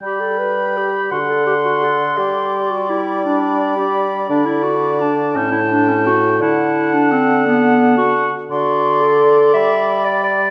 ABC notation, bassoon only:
X:1
M:3/4
L:1/8
Q:1/4=170
K:G
V:1 name="Bassoon" clef=bass
G,6 | D,6 | G,6- | G,6 |
D,6 | A,,6 | D,6- | D,6 |
D,6 | G,6 |]